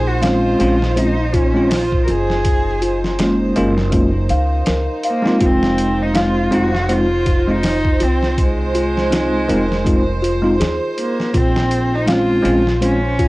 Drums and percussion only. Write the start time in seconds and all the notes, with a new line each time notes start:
0.22 snare, closed hi-hat
0.60 closed hi-hat
0.82 snare
0.97 closed hi-hat
1.34 kick, closed hi-hat
1.71 snare, open hi-hat
1.92 kick
2.08 closed hi-hat
2.30 snare
2.45 kick, closed hi-hat
2.82 closed hi-hat
3.04 snare
3.19 snare, closed hi-hat
3.56 closed hi-hat
3.78 snare
3.92 kick, closed hi-hat
4.29 closed hi-hat
4.66 snare, closed hi-hat
5.03 closed hi-hat
5.26 snare
5.41 kick, closed hi-hat
5.63 snare
5.78 closed hi-hat
6.15 snare, closed hi-hat
6.52 closed hi-hat
6.75 snare
6.89 closed hi-hat
7.26 kick, closed hi-hat
7.63 snare, open hi-hat
7.85 kick
8.00 closed hi-hat
8.23 snare
8.38 kick, closed hi-hat
8.75 closed hi-hat
8.97 snare
9.12 snare, closed hi-hat
9.49 closed hi-hat
9.72 snare
9.86 kick, closed hi-hat
10.24 closed hi-hat
10.61 snare, closed hi-hat
10.98 closed hi-hat
11.20 snare
11.34 kick, closed hi-hat
11.56 snare
11.71 closed hi-hat
12.08 snare, closed hi-hat
12.45 closed hi-hat
12.67 snare
12.82 closed hi-hat
13.19 kick, closed hi-hat